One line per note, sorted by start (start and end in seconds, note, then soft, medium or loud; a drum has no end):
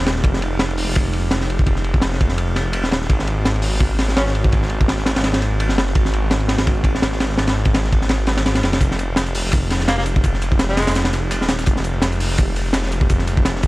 0.00 0.23 D#1 loud
0.00 3.06 G#3 medium
0.00 8.77 A#3 medium
0.00 3.06 D#4 medium
0.00 3.06 G4 medium
0.06 snare loud
0.06 ride medium
0.16 snare soft
0.24 0.86 F1 loud
0.24 kick loud
0.24 ride medium
0.34 snare medium
0.42 ride medium
0.59 snare loud
0.59 ride loud
0.71 ride soft
0.78 open hi-hat medium
0.87 1.30 F1 loud
0.95 kick loud
0.95 ride medium
1.13 ride medium
1.31 1.65 F1 medium
1.31 snare loud
1.31 ride medium
1.41 snare medium
1.50 ride medium
1.59 kick medium
1.66 2.29 F1 loud
1.66 kick loud
1.66 ride medium
1.76 snare soft
1.84 ride medium
1.94 kick medium
2.02 snare loud
2.02 ride medium
2.13 snare soft
2.21 kick loud
2.21 ride medium
2.29 2.85 F1 loud
2.29 snare medium
2.38 ride medium
2.56 snare soft
2.56 ride medium
2.73 ride loud
2.83 3.08 D#1 loud
2.83 snare medium
2.91 snare loud
2.91 ride medium
3.02 snare soft
3.09 3.71 G#1 loud
3.09 8.77 B3 medium
3.09 8.77 C#4 medium
3.09 8.77 F#4 medium
3.09 kick loud
3.09 ride medium
3.19 snare medium
3.27 ride medium
3.45 snare loud
3.45 ride medium
3.56 ride soft
3.62 open hi-hat medium
3.73 4.15 G#1 loud
3.80 kick loud
3.80 ride medium
3.98 snare medium
3.98 ride medium
4.09 snare soft
4.17 4.51 G#1 medium
4.17 4.23 C#4 medium
4.17 snare loud
4.17 ride medium
4.26 4.32 C#4 medium
4.26 snare medium
4.35 ride medium
4.44 kick loud
4.52 5.14 G#1 loud
4.52 kick loud
4.52 ride medium
4.62 snare soft
4.69 ride medium
4.81 kick loud
4.88 snare loud
4.88 ride medium
4.98 snare soft
5.06 snare loud
5.06 ride medium
5.16 5.71 G#1 loud
5.16 snare loud
5.16 ride medium
5.24 snare loud
5.24 ride medium
5.33 snare loud
5.33 ride medium
5.41 snare soft
5.41 ride medium
5.60 ride medium
5.69 5.94 F#1 loud
5.69 snare medium
5.78 snare loud
5.78 ride medium
5.87 snare soft
5.95 6.57 G#1 loud
5.95 kick loud
5.95 ride medium
6.05 snare medium
6.13 ride medium
6.31 snare loud
6.31 ride medium
6.40 ride soft
6.48 snare medium
6.48 ride medium
6.58 7.01 G#1 loud
6.58 snare loud
6.58 ride medium
6.67 kick loud
6.67 ride medium
6.84 kick medium
6.84 ride medium
6.95 snare medium
7.02 7.37 G#1 medium
7.02 snare loud
7.02 ride loud
7.12 snare medium
7.20 snare loud
7.20 ride medium
7.29 snare soft
7.38 8.00 G#1 loud
7.38 snare loud
7.38 ride medium
7.47 snare loud
7.47 ride medium
7.56 snare soft
7.65 kick medium
7.65 ride medium
7.74 snare loud
7.74 ride medium
7.85 snare soft
7.92 kick medium
7.92 ride medium
8.02 8.44 G#1 loud
8.02 snare medium
8.09 snare loud
8.09 ride medium
8.27 snare loud
8.27 ride medium
8.37 snare loud
8.37 ride medium
8.45 8.62 G#1 medium
8.45 snare loud
8.45 ride medium
8.55 snare loud
8.55 ride medium
8.63 8.79 F#1 loud
8.63 snare loud
8.63 ride medium
8.73 snare loud
8.73 ride medium
8.81 9.43 F1 loud
8.81 13.67 G#3 medium
8.81 13.67 A#3 medium
8.81 13.67 D#4 medium
8.81 13.67 G4 medium
8.81 kick loud
8.81 closed hi-hat medium
8.81 ride medium
8.91 snare medium
8.99 closed hi-hat medium
8.99 ride medium
9.16 snare loud
9.16 closed hi-hat medium
9.16 ride medium
9.26 closed hi-hat soft
9.26 ride soft
9.35 closed hi-hat medium
9.35 open hi-hat medium
9.45 9.87 F1 loud
9.52 kick loud
9.52 closed hi-hat medium
9.52 ride medium
9.70 snare soft
9.70 snare medium
9.70 open hi-hat medium
9.70 ride medium
9.80 snare soft
9.88 10.23 F1 medium
9.88 9.94 A#3 medium
9.88 snare loud
9.88 closed hi-hat medium
9.88 ride medium
9.98 10.03 A#3 medium
9.98 snare medium
10.05 closed hi-hat medium
10.05 ride medium
10.16 kick loud
10.24 10.86 F1 loud
10.24 kick loud
10.24 closed hi-hat medium
10.24 ride medium
10.34 snare soft
10.42 snare medium
10.42 closed hi-hat medium
10.42 ride medium
10.52 kick medium
10.59 snare loud
10.59 closed hi-hat medium
10.59 ride medium
10.69 10.95 G#3 medium
10.69 snare soft
10.77 snare loud
10.77 snare medium
10.77 closed hi-hat medium
10.77 ride medium
10.82 snare medium
10.82 closed hi-hat medium
10.87 11.42 F1 loud
10.87 snare medium
10.87 snare loud
10.87 closed hi-hat medium
10.87 ride medium
10.91 snare medium
10.91 closed hi-hat medium
10.95 snare loud
10.95 closed hi-hat medium
10.95 ride medium
11.05 snare loud
11.05 snare soft
11.05 ride medium
11.13 snare medium
11.13 closed hi-hat medium
11.13 ride medium
11.31 snare loud
11.31 closed hi-hat medium
11.31 ride medium
11.41 11.65 D#1 loud
11.41 snare medium
11.48 snare loud
11.48 closed hi-hat medium
11.48 ride medium
11.59 snare soft
11.59 snare loud
11.59 closed hi-hat medium
11.66 12.29 F1 loud
11.66 kick loud
11.66 closed hi-hat medium
11.66 ride medium
11.76 snare medium
11.84 closed hi-hat medium
11.84 ride medium
12.02 snare loud
12.02 closed hi-hat medium
12.02 ride medium
12.12 closed hi-hat soft
12.12 ride soft
12.20 closed hi-hat medium
12.20 open hi-hat medium
12.30 12.73 F1 loud
12.38 kick loud
12.38 closed hi-hat medium
12.38 ride medium
12.56 snare soft
12.56 open hi-hat medium
12.56 ride medium
12.66 snare soft
12.73 13.08 F1 medium
12.73 snare loud
12.73 closed hi-hat medium
12.73 ride loud
12.83 snare medium
12.92 closed hi-hat medium
12.92 ride medium
13.01 kick medium
13.10 13.67 F1 loud
13.10 kick loud
13.10 closed hi-hat medium
13.10 ride medium
13.19 snare soft
13.27 snare medium
13.27 closed hi-hat medium
13.27 ride medium
13.37 kick loud
13.45 snare loud
13.45 closed hi-hat medium
13.45 ride medium
13.56 snare soft
13.63 kick loud
13.63 closed hi-hat medium
13.63 ride medium